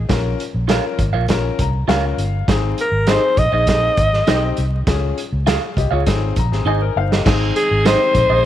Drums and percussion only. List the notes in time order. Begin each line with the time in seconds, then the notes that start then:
0.09 kick, snare, closed hi-hat
0.40 closed hi-hat
0.69 snare, closed hi-hat
0.99 kick, closed hi-hat
1.28 kick, snare, closed hi-hat
1.59 kick, closed hi-hat
1.89 snare, closed hi-hat
2.18 closed hi-hat
2.48 kick, snare, closed hi-hat
2.78 closed hi-hat
3.07 snare, closed hi-hat
3.37 kick, closed hi-hat
3.67 kick, snare, closed hi-hat
3.97 kick, closed hi-hat
4.13 snare
4.27 snare, closed hi-hat
4.57 closed hi-hat
4.87 kick, snare, closed hi-hat
5.18 closed hi-hat
5.47 snare, closed hi-hat
5.77 kick, closed hi-hat
6.06 kick, snare, closed hi-hat
6.36 kick, closed hi-hat
6.52 snare
7.12 snare
7.26 kick, snare, crash
7.56 closed hi-hat
7.85 snare, closed hi-hat
8.15 kick, closed hi-hat